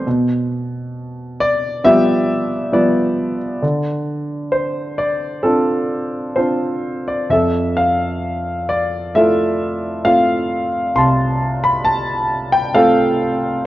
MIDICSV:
0, 0, Header, 1, 2, 480
1, 0, Start_track
1, 0, Tempo, 894188
1, 33, Time_signature, 4, 2, 24, 8
1, 2433, Tempo, 924499
1, 4833, Tempo, 899550
1, 7237, End_track
2, 0, Start_track
2, 0, Title_t, "Grand piano"
2, 0, Program_c, 0, 0
2, 0, Control_c, 0, 64, 127
2, 36, Note_on_c, 0, 47, 52
2, 38, Control_c, 0, 64, 0
2, 137, Control_c, 0, 64, 127
2, 754, Note_on_c, 0, 74, 84
2, 988, Note_on_c, 0, 53, 44
2, 990, Note_on_c, 0, 55, 41
2, 991, Note_on_c, 0, 76, 88
2, 993, Note_on_c, 0, 59, 43
2, 995, Note_off_c, 0, 74, 0
2, 998, Note_on_c, 0, 67, 56
2, 1448, Note_off_c, 0, 53, 0
2, 1449, Note_off_c, 0, 55, 0
2, 1450, Note_off_c, 0, 59, 0
2, 1462, Note_on_c, 0, 53, 41
2, 1465, Note_on_c, 0, 55, 38
2, 1466, Note_on_c, 0, 59, 44
2, 1467, Note_on_c, 0, 74, 57
2, 1478, Note_off_c, 0, 76, 0
2, 1806, Note_off_c, 0, 74, 0
2, 1927, Note_off_c, 0, 47, 0
2, 1931, Note_off_c, 0, 67, 0
2, 1932, Note_off_c, 0, 53, 0
2, 1934, Note_off_c, 0, 55, 0
2, 1934, Note_off_c, 0, 59, 0
2, 1944, Note_on_c, 0, 50, 51
2, 1953, Control_c, 0, 64, 0
2, 2042, Control_c, 0, 64, 127
2, 2426, Note_on_c, 0, 72, 59
2, 2665, Note_on_c, 0, 74, 65
2, 2671, Note_off_c, 0, 72, 0
2, 2897, Note_on_c, 0, 69, 62
2, 2903, Note_on_c, 0, 60, 36
2, 2906, Note_on_c, 0, 62, 36
2, 2907, Note_on_c, 0, 65, 41
2, 2911, Note_off_c, 0, 74, 0
2, 3371, Note_off_c, 0, 60, 0
2, 3373, Note_off_c, 0, 62, 0
2, 3374, Note_off_c, 0, 65, 0
2, 3380, Note_on_c, 0, 72, 51
2, 3383, Note_on_c, 0, 60, 36
2, 3386, Note_on_c, 0, 62, 30
2, 3387, Note_on_c, 0, 65, 38
2, 3398, Note_off_c, 0, 69, 0
2, 3727, Note_off_c, 0, 72, 0
2, 3755, Note_on_c, 0, 74, 54
2, 3850, Note_off_c, 0, 50, 0
2, 3856, Note_off_c, 0, 60, 0
2, 3857, Note_off_c, 0, 62, 0
2, 3858, Note_off_c, 0, 65, 0
2, 3868, Note_on_c, 0, 41, 45
2, 3873, Note_on_c, 0, 76, 64
2, 3878, Note_off_c, 0, 74, 0
2, 3879, Control_c, 0, 64, 0
2, 3885, Note_on_c, 0, 69, 50
2, 3955, Control_c, 0, 64, 127
2, 4112, Note_on_c, 0, 77, 67
2, 4122, Note_off_c, 0, 76, 0
2, 4591, Note_on_c, 0, 74, 66
2, 4610, Note_off_c, 0, 77, 0
2, 4814, Note_off_c, 0, 74, 0
2, 4820, Note_off_c, 0, 69, 0
2, 4831, Note_on_c, 0, 76, 71
2, 4835, Note_on_c, 0, 57, 43
2, 4838, Note_on_c, 0, 64, 37
2, 4840, Note_on_c, 0, 65, 43
2, 4841, Note_on_c, 0, 69, 51
2, 5291, Note_off_c, 0, 76, 0
2, 5300, Note_off_c, 0, 57, 0
2, 5302, Note_off_c, 0, 64, 0
2, 5302, Note_off_c, 0, 65, 0
2, 5311, Note_on_c, 0, 77, 78
2, 5312, Note_on_c, 0, 57, 35
2, 5315, Note_on_c, 0, 65, 43
2, 5316, Note_on_c, 0, 60, 35
2, 5649, Note_off_c, 0, 77, 0
2, 5768, Note_off_c, 0, 41, 0
2, 5774, Note_off_c, 0, 69, 0
2, 5776, Note_off_c, 0, 57, 0
2, 5778, Note_off_c, 0, 60, 0
2, 5778, Note_off_c, 0, 65, 0
2, 5793, Note_on_c, 0, 36, 53
2, 5796, Note_on_c, 0, 84, 78
2, 5807, Note_on_c, 0, 81, 56
2, 6157, Note_on_c, 0, 83, 78
2, 6165, Note_off_c, 0, 84, 0
2, 6261, Note_off_c, 0, 81, 0
2, 6269, Note_on_c, 0, 81, 82
2, 6278, Note_off_c, 0, 83, 0
2, 6630, Note_on_c, 0, 79, 80
2, 6643, Note_off_c, 0, 81, 0
2, 6748, Note_on_c, 0, 77, 78
2, 6752, Note_on_c, 0, 57, 44
2, 6753, Note_on_c, 0, 69, 61
2, 6754, Note_on_c, 0, 60, 42
2, 6757, Note_off_c, 0, 79, 0
2, 6758, Note_on_c, 0, 65, 47
2, 7219, Note_off_c, 0, 57, 0
2, 7220, Note_off_c, 0, 60, 0
2, 7222, Note_off_c, 0, 65, 0
2, 7237, Note_off_c, 0, 36, 0
2, 7237, Note_off_c, 0, 69, 0
2, 7237, Note_off_c, 0, 77, 0
2, 7237, End_track
0, 0, End_of_file